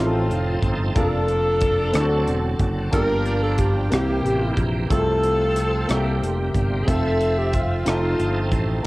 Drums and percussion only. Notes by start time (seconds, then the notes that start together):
0.31 closed hi-hat
0.62 kick, closed hi-hat
0.96 kick, closed hi-hat
1.28 closed hi-hat
1.61 kick, closed hi-hat
1.94 cross-stick, closed hi-hat
2.27 closed hi-hat
2.59 kick, closed hi-hat
2.93 kick, closed hi-hat
3.26 closed hi-hat
3.58 kick, closed hi-hat
3.92 cross-stick, closed hi-hat
4.26 closed hi-hat
4.57 kick, closed hi-hat
4.90 kick, closed hi-hat
5.24 closed hi-hat
5.56 cross-stick, closed hi-hat
5.89 cross-stick, closed hi-hat
6.23 closed hi-hat
6.54 kick, closed hi-hat
6.88 kick, closed hi-hat
7.21 closed hi-hat
7.53 kick, closed hi-hat
7.86 cross-stick, closed hi-hat
8.20 closed hi-hat
8.52 kick, closed hi-hat